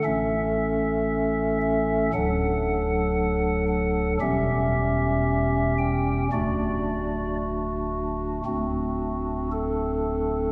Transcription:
0.04 A1 A2 A3 C#4 A4 E5
1.62 E5
2.13 D1 D2 F#3 D4 A4 F#5
3.68 F#5
4.21 E1 E2 G3 C#4 G4 E5
5.78 G5
6.32 D1 D2 A3 D4 F#4 D5
8.45 D1 D2 A3 C4 D4 F#4
9.51 A4

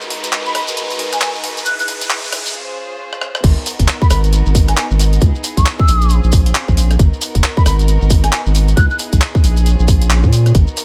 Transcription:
Already playing: G#3 D#4 F#4 A#4 B4, riser
0.01 shekere
0.10 open hi-hat
0.24 closed hi-hat, shekere
0.33 clap, shekere
0.46 B5, shekere
0.55 B5, cross-stick, open hi-hat
0.68 closed hi-hat, shekere
0.77 closed hi-hat, shekere
0.90 open hi-hat, shekere
0.99 open hi-hat
1.12 G#5, cross-stick, closed hi-hat, shekere
1.21 G#5, clap, closed hi-hat, shekere
1.35 shekere
1.44 open hi-hat
1.57 closed hi-hat, shekere
1.65 E4 G#4 F#6, closed hi-hat, shekere
1.79 F#6, open hi-hat, shekere
1.88 open hi-hat
2.01 closed hi-hat, shekere
2.10 clap, shekere
2.24 shekere
2.33 cross-stick, open hi-hat
2.46 closed hi-hat, shekere
2.55 C#4 F4 C5
3.13 cross-stick
3.21 cross-stick
3.35 cross-stick
3.44 G#1 B3 D#4 F#4 A#4, kick, closed hi-hat, crash, shekere
3.57 shekere
3.66 open hi-hat, shekere
3.79 F#1, kick, closed hi-hat, shekere
3.88 clap, shekere
4.02 B5, kick, shekere
4.10 G#1 B5, cross-stick, open hi-hat, shekere
4.24 closed hi-hat, shekere
4.33 closed hi-hat, shekere
4.46 G#1, shekere
4.55 kick, open hi-hat, shekere
4.68 G#5, cross-stick, closed hi-hat, shekere
4.77 G#5, clap, closed hi-hat, shekere
4.91 G#1, shekere
4.99 open hi-hat, shekere
5.13 closed hi-hat, shekere
5.21 C#2 E4 G#4, kick, closed hi-hat, shekere
5.35 shekere
5.44 open hi-hat, shekere
5.57 B1 C#6, kick, closed hi-hat, shekere
5.66 clap, shekere
5.79 E6, kick, shekere
5.88 A#1, open hi-hat, shekere
6.01 closed hi-hat, shekere
6.09 C4 C#4 F4, closed hi-hat, shekere
6.23 A#1, shekere
6.32 kick, open hi-hat, shekere
6.46 closed hi-hat, shekere
6.55 clap, closed hi-hat, shekere
6.68 A#1, kick, shekere
6.77 open hi-hat, shekere
6.91 cross-stick, closed hi-hat, shekere
6.99 G#1 B3 D#4 F#4 A#4, kick, closed hi-hat, shekere
7.13 shekere
7.21 open hi-hat, shekere
7.35 F#1, kick, closed hi-hat, shekere
7.43 clap, shekere
7.57 B5, kick, shekere
7.66 G#1 B5, cross-stick, open hi-hat, shekere
7.79 closed hi-hat, shekere
7.88 closed hi-hat, shekere
8.02 G#1, shekere
8.10 kick, open hi-hat, shekere
8.24 G#5, cross-stick, closed hi-hat, shekere
8.32 G#5, clap, closed hi-hat, shekere
8.46 G#1, shekere
8.55 open hi-hat, shekere
8.68 closed hi-hat, shekere
8.77 C#2 E4 G#4 F#6, kick, closed hi-hat, shekere
8.90 F#6, shekere
8.99 open hi-hat, shekere
9.13 B1, kick, closed hi-hat, shekere
9.21 clap, shekere
9.35 kick, shekere
9.44 A#1, open hi-hat, shekere
9.57 closed hi-hat, shekere
9.66 C4 C#4 F4, closed hi-hat, shekere
9.79 A#1, shekere
9.88 kick, open hi-hat, shekere
10.02 closed hi-hat, shekere
10.10 clap, closed hi-hat, shekere
10.23 A#2, kick, shekere
10.33 open hi-hat, shekere
10.46 cross-stick, closed hi-hat, shekere
10.55 G#1 B3 D#4 F#4 A#4, kick, closed hi-hat, shekere
10.67 shekere
10.77 open hi-hat, shekere

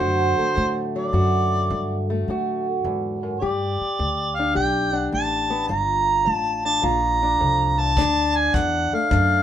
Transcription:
Already playing: D3 F#3 A3 C5
0.00 D2 F#2 F#4
0.39 A3, muted upright bass stroke
0.56 D2 A2
0.96 F#3 D5
1.13 D2 F#2 F#4
1.70 D2 G2
2.10 A3
2.28 D2 A2 F#4
2.84 E2 G#2
3.23 F#2
3.40 G2 G4 D5
3.81 muted upright bass stroke
3.99 D2 G2
4.36 D4 F5
4.54 B1 G2 G4 G5
4.93 D4 F#5
5.12 A1 G2 A5
5.50 B3
5.68 G1 G2 F4 A#5
6.25 A1 G2
6.31 A5
6.65 D4 A5
6.82 A#1 G2 F4 A#5
7.23 D4
7.39 C2 F2
7.78 E2 A5
7.97 D2 D4, kick
8.36 G#5
8.54 D2 E2 F#5, kick
8.92 A3 F5, muted upright bass stroke
9.11 D2 F#2 D4, kick

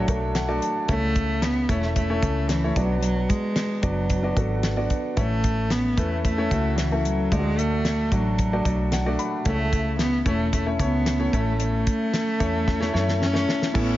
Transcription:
Already playing: A2 F#3 A3 D4 F#4 C#5 D5
0.08 B1 A3 D4 F#4 A4, kick, closed hi-hat
0.35 F#5, snare, closed hi-hat
0.48 A3 D4 F#4 D5
0.62 A5, closed hi-hat
0.88 C#2 C#3 A3 C#4 E4 C#5, kick, closed hi-hat
1.16 kick, closed hi-hat
1.42 B3, snare, closed hi-hat
1.69 E1 A3 C#4 E4 C#5, kick, closed hi-hat
1.82 snare
1.96 A3, kick, closed hi-hat
2.10 A3 C#4 E4 C#5
2.22 C#2 A3 C#4 E4 C#5, kick, closed hi-hat
2.49 E3, snare, closed hi-hat
2.64 A3 C#4 E4 C#5
2.75 B1 F#3 B3 D4 F#4 D5, kick, closed hi-hat
3.01 F#3, closed hi-hat
3.29 G#3, kick, closed hi-hat
3.56 snare, closed hi-hat
3.82 F#1 F#3 B3 D4 F#4 D5, kick, closed hi-hat
4.10 kick, closed hi-hat
4.23 B3 D4 F#4 D5
4.36 G#1 B3 D4 F#4 A4, kick, closed hi-hat
4.63 snare, closed hi-hat
4.77 B3 D4 F#4 D5
4.90 kick, closed hi-hat
5.17 A1 A3 C#4 E4 C#5, kick, closed hi-hat
5.44 kick, closed hi-hat
5.70 B3, snare, closed hi-hat
5.97 E2 A3 C#4 E4 B4, kick, closed hi-hat
6.24 A3, kick, closed hi-hat
6.38 A3 C#4 E4 C#5
6.51 C#2 A3 C#4 E4 F#4, kick, closed hi-hat
6.78 E3, snare, closed hi-hat
6.92 A3 C#4 E4 A4
7.05 F#3, closed hi-hat
7.32 D2 A2 G#3 A3 D4 F4 D5, kick, closed hi-hat
7.39 F#4
7.59 A3, closed hi-hat
7.85 snare, closed hi-hat
8.12 A1 F#3 A3 D4 F#4 D5, kick, closed hi-hat
8.38 kick, closed hi-hat
8.53 A3 D4 F#4 D5
8.65 B1 A3 D4 F#4 D5, kick, closed hi-hat
8.92 F#5, snare, closed hi-hat
9.06 A3 D4 F#4 D5
9.19 B5, closed hi-hat
9.45 C#2 C#3 A3 C#4 E4 C#5, kick, closed hi-hat
9.73 kick, closed hi-hat
9.99 B3, snare, closed hi-hat
10.26 E1 A3 C#4 E4 C#5, kick, closed hi-hat
10.53 A3, kick, closed hi-hat
10.66 A3 C#4 E4 C#5
10.79 C#2 A3 B3 C#4 E4 C#5, kick, closed hi-hat
11.06 snare, closed hi-hat
11.19 A3 C#4 E4 C#5
11.33 A1 A3 C#4 E4 C#5, kick, closed hi-hat
11.60 A3, closed hi-hat
11.87 kick, closed hi-hat
12.14 snare, closed hi-hat
12.40 E2 A3 C#4 E4 C#5, kick, closed hi-hat
12.68 kick, snare
12.80 A3 C#4 E4 C#5, snare
12.93 F#2 A3 C#4 E4 C#5, snare
13.08 snare
13.22 C#4, snare
13.33 A3 C#4 E4 C#5, snare
13.49 snare
13.62 snare
13.74 A1 A2 E3 A3 B3 C#4 E4 A4 C#5, kick, crash

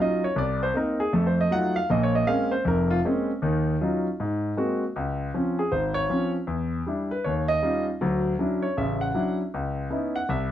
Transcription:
0.00 F#3 C#4 D#4 F4 D#5
0.24 C#5
0.36 C2 D5
0.63 C5
0.74 A#3 C4 D#4 A#4
1.00 G#4
1.13 F2 A3 A4
1.27 C5
1.41 D#5
1.51 F#3 A3 D#4 F4 F#5
1.76 F5
1.90 A#1 A#2 D#5
2.03 C#5
2.15 D#5
2.27 G#3 A#3 C4 C#4 F5
2.51 C5
2.65 F1 F2 A#4
2.91 F4
3.04 G#3 A#3 C4 C#4
3.42 D#2 D#3
3.81 F#3 C#4 D#4 F4
4.20 G#2
4.57 G#3 A#3 C4 F#4
4.96 C#2
5.34 F3 C4 C#4
5.59 G#4
5.72 G#1 C5
5.94 C#5
6.09 F3 C4 C#4
6.47 E2
6.87 G3 D4 E4
7.11 B4
7.24 D#2 C#5
7.48 D#5
7.63 G3 C#4 D#4 F4
8.01 D2 F#3
8.39 F#3 C#4 D4 E4
8.62 C#5
8.77 A1 C#3 E5
9.01 F#5
9.14 F#3 C#4 D4 E4
9.54 C#2
9.90 B3 C#4 D#4 E4
10.16 F#5
10.29 C2 E5

